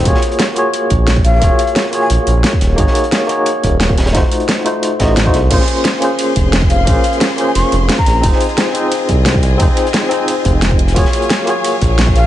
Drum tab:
CC |----------------|----------------|----------------|----------------|
RD |----------------|----------------|----------------|----------------|
HH |x-xxx-x-x-x-x-x-|x-xxx-x-x-x-x-x-|x-xxx-x-x-x-x-xx|x-xxx-x-x-x-x-x-|
SD |-o--o-------o---|----o-------o-o-|-o--o-------o-oo|o---o-----o-o-o-|
BD |o---------o--o--|o------------o--|o---------o--o--|o---------o--o--|

CC |x---------------|----------------|----------------|----------------|
RD |x---x---x---x---|x---x---x---x---|x---x---x---x---|x---x---x---x---|
HH |x-xxx-x-x-x-x-x-|x-xxx-x-x-x-x-x-|x-xxx-x-x-x-x-x-|x-xxx-x-x-x-x-xx|
SD |-o--o-------o---|----o-------o-o-|-o--o-------o---|----o-------o--o|
BD |o---------o--o--|o------------o--|o---------o--o--|o---------o--o--|

CC |----------------|
RD |x---x---x---x---|
HH |x-xxx-x-x-x-x-x-|
SD |-o--o-------o---|
BD |o---------o--o--|